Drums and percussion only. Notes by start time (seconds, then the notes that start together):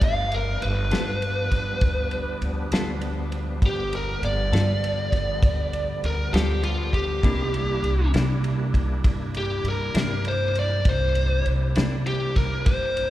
0.01 kick, ride
0.32 ride
0.62 ride
0.91 snare, ride
1.22 ride
1.51 kick, snare, ride
1.81 kick, ride
2.11 ride
2.42 ride
2.72 snare, ride
3.01 ride
3.32 ride
3.62 kick, ride
3.93 ride
4.23 ride
4.53 snare, ride
4.84 ride
5.12 kick, snare, ride
5.43 kick, ride
5.73 ride
6.04 ride
6.34 snare, ride
6.63 ride
6.93 kick, ride
7.23 kick, ride
7.54 ride
7.84 ride
8.14 snare, ride
8.44 ride
8.74 kick, ride
9.04 kick, ride
9.34 ride
9.65 ride
9.95 snare, ride
10.25 ride
10.55 ride
10.85 kick, ride
11.15 ride
11.46 ride
11.75 snare, ride
12.06 ride
12.36 kick, snare, ride
12.66 kick, ride
12.97 ride